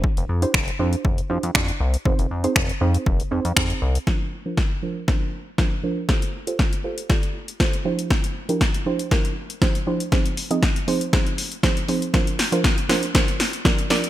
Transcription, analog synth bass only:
\new Staff \with { instrumentName = "Analog synth bass" } { \clef bass \time 4/4 \key bes \lydian \tempo 4 = 119 r16 f,,16 f,8 f,,8 f,8 f,,8 f,16 f,16 f,8 c,8 | f,,16 f,,16 f,8 f,,8 f,8 f,,8 f,16 f,16 f,8 c,8 | r1 | r1 |
r1 | r1 | r1 | }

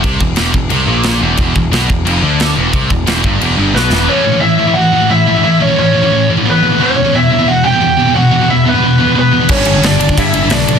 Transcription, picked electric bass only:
\new Staff \with { instrumentName = "Picked electric bass" } { \clef bass \time 4/4 \key e \minor \tempo 4 = 178 c,8 e,,8 e,,8 e,,8 c,8 ais,,4 e,,8 | e,,8 e,,8 b,,8 e,,8 f,,8 d,4 e,,8 | c,8 e,,8 e,,8 g,,8 e,,8 g,,8 b,,8 e,,8 | \key a \mixolydian r1 |
r1 | r1 | r1 | g,,8 g,,8 g,,8 g,,8 g,8 g,,8 b,,8 b,,8 | }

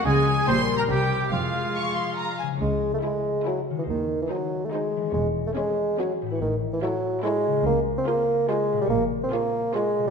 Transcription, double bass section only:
\new Staff \with { instrumentName = "Double bass section" } { \clef bass \time 3/4 \key f \minor \tempo 4 = 142 des,4 bes,,4 c,4 | f,,4 r2 | \key cis \minor cis,4 r2 | dis,4 r2 |
e,,4 r2 | a,,4 r2 | \key des \lydian des,4 r2 | bes,,4 r2 | }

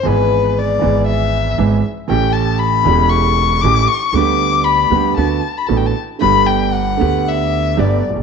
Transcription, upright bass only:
\new Staff \with { instrumentName = "Upright bass" } { \clef bass \time 4/4 \key g \major \tempo 4 = 117 gis,,4~ gis,,16. r32 gis,,4~ gis,,16. r32 gis,,16. r8 r32 | a,,4~ a,,16. r32 e,,4~ e,,16. r32 a,,16. r8 r32 | d,4~ d,16. r32 d,16. r32 d,16. r8 r32 a,,16. r8 r32 | g,,4~ g,,16. r32 d,4~ d,16. r32 g,,16. r16 a,,32 bes,,32 r32 | }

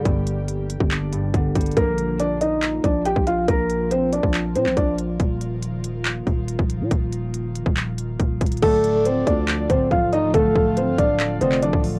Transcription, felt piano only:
\new Staff \with { instrumentName = "Felt piano" } { \time 4/4 \key d \phrygian \tempo 4 = 140 r1 | <bes bes'>4 <d' d''>8 <ees' ees''>4 <d' d''>8 <g' g''>8 <f' f''>8 | <bes bes'>4 <c' c''>8 <d' d''>4 <c' c''>8 <d' d''>8 r8 | r1 |
r1 | <a a'>4 <c' c''>8 <d' d''>4 <c' c''>8 <f' f''>8 <ees' ees''>8 | <a a'>4 <c' c''>8 <d' d''>4 <c' c''>8 <d' d''>8 r8 | }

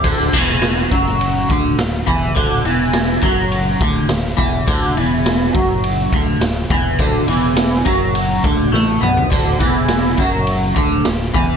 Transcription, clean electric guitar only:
\new Staff \with { instrumentName = "Clean electric guitar" } { \clef bass \time 4/4 \key d \major \tempo 4 = 104 <d, d>8 <e, e>4 <fis, fis>4 <d, d>8 d,8 <e, e>8 | <d, d>8 <e, e>4 <fis, fis>4 <d, d>8 d,8 <e, e>8 | <d, d>8 <e, e>4 <fis, fis>4 <d, d>8 d,8 <e, e>8 | <d, d>8 <e, e>4 <fis, fis>4 <d, d>8 <a, a>8 <b, b>8 |
<d, d>8 <e, e>4 <fis, fis>4 <d, d>8 d,8 <e, e>8 | }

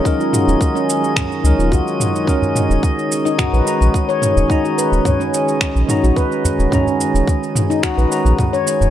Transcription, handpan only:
\new Staff \with { instrumentName = "Handpan" } { \time 4/4 \key ces \lydian \tempo 4 = 108 ees'16 f'16 ges'8 bes'16 des'16 r4 ees'16 f'16 ges'16 r8. | cis'16 r4. dis'16 fis'16 b'4 cis''16 cis'16 r16 | dis'16 fis'16 b'8 cis''16 cis'16 r4 dis'16 fis'16 b'16 r8. | cis'16 r4. dis'16 fis'16 b'4 cis''16 cis'16 r16 | }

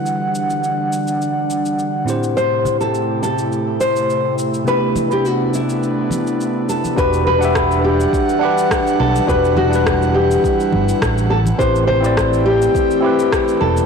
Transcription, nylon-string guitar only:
\new Staff \with { instrumentName = "Nylon-string guitar" } { \time 4/4 \key e \minor \tempo 4 = 104 r1 | c''8. a'8. a'4 c''4 r8 | b'8. g'16 fis'8 e'2 a'8 | b'8 b'4 g'2 a'8 |
b'8 fis'4 g'2 a'8 | c''8 c''4 g'2 a'8 | }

